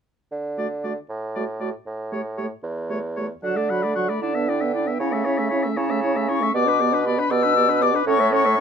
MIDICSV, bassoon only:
0, 0, Header, 1, 2, 480
1, 0, Start_track
1, 0, Key_signature, 2, "major"
1, 0, Tempo, 520833
1, 292, Time_signature, 6, 3, 24, 8
1, 4608, Tempo, 510638
1, 7995, End_track
2, 0, Start_track
2, 0, Title_t, "Bassoon"
2, 0, Program_c, 0, 70
2, 293, Note_on_c, 0, 50, 40
2, 892, Note_off_c, 0, 50, 0
2, 1008, Note_on_c, 0, 45, 43
2, 1599, Note_off_c, 0, 45, 0
2, 1717, Note_on_c, 0, 45, 43
2, 2306, Note_off_c, 0, 45, 0
2, 2425, Note_on_c, 0, 40, 56
2, 3042, Note_off_c, 0, 40, 0
2, 3163, Note_on_c, 0, 50, 65
2, 3801, Note_off_c, 0, 50, 0
2, 3889, Note_on_c, 0, 50, 65
2, 4524, Note_off_c, 0, 50, 0
2, 4607, Note_on_c, 0, 49, 66
2, 5245, Note_off_c, 0, 49, 0
2, 5330, Note_on_c, 0, 49, 73
2, 5972, Note_off_c, 0, 49, 0
2, 6057, Note_on_c, 0, 47, 74
2, 6694, Note_off_c, 0, 47, 0
2, 6778, Note_on_c, 0, 47, 84
2, 7409, Note_off_c, 0, 47, 0
2, 7493, Note_on_c, 0, 45, 87
2, 7995, Note_off_c, 0, 45, 0
2, 7995, End_track
0, 0, End_of_file